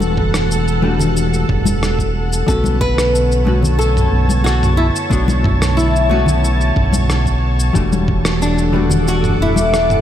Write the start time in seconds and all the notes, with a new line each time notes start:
Already playing: E1 E3 G3 A3 D4 F#4 A4 F#5
0.00 high conga, cabasa
0.17 kick, mid tom
0.34 cross-stick, cabasa
0.51 cabasa
0.68 cabasa
0.82 E3 G3 A3 D4 F#4, high conga
0.99 low conga, cabasa
1.17 cabasa
1.34 cabasa
1.49 E1, kick, mid tom
1.65 high conga, cabasa
1.83 cross-stick, cabasa
1.99 kick, cabasa
2.33 cabasa
2.46 B1 D3 A3 B3 C#4 F#4 A4 C#5 A5, kick, cabasa
2.64 high conga, cabasa
2.81 B4, kick
2.98 cross-stick, cabasa
3.15 cabasa
3.32 cabasa
3.45 D3 A3 B3 C#4 F#4, high conga
3.63 low conga, cabasa
3.79 A4, cabasa
3.97 mid tom, cabasa
4.13 B1
4.29 high conga, cabasa
4.44 F#4, cross-stick, cabasa
4.63 mid tom, cabasa
4.77 E4
4.96 cabasa
5.10 B1 D3 A3 B3 D4 F#4 C#5, kick, cabasa
5.28 high conga, cabasa
5.44 kick, mid tom
5.62 cross-stick, cabasa
5.77 E4, cabasa
5.96 cabasa
6.09 D3 A3 B3 C#4 F#4, high conga
6.26 low conga, cabasa
6.45 cabasa
6.61 cabasa
6.76 B1, kick, mid tom
6.93 high conga, cabasa
7.10 cross-stick, cabasa
7.26 kick, cabasa
7.60 cabasa
7.73 E1 E3 G3 A3 D4 F#4 A4 F#5 D6, kick, cabasa
7.92 high conga, cabasa
8.08 kick
8.25 cross-stick, cabasa
8.42 D4, cabasa
8.58 cabasa
8.72 E3 G3 A3 D4 F#4, high conga
8.90 low conga, cabasa
9.08 F#4, cabasa
9.24 mid tom, cabasa
9.40 E1 E4
9.56 high conga, cabasa
9.74 cross-stick, cabasa
9.90 mid tom, cabasa